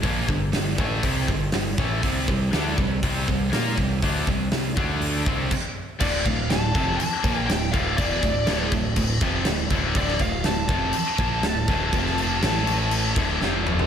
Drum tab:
CC |----------------|----------------|------------x---|x-x-x-x-x-x-x-x-|
HH |o---o---o---o---|o---o---o---o---|o---o---o-------|----------------|
SD |----o-------o-o-|----o-------o---|----o-----------|----o-------o---|
T2 |----------------|----------------|----------------|----------------|
FT |----------------|----------------|----------------|----------------|
BD |o-o---o-o-o---o-|o-o---o-o-o---o-|o-o---o---o-o---|o-o---o---o---o-|

CC |x-x-x-x-x-x-x-x-|x-x-x-x-x-x-x-x-|x-x-x-x-x-x-----|
HH |----------------|----------------|----------------|
SD |----o-------o---|-o--o-------o---|-o--o-------o---|
T2 |----------------|----------------|--------------o-|
FT |----------------|----------------|---------------o|
BD |o-o---o-o-o---o-|o-o---o---o---o-|o---------o-----|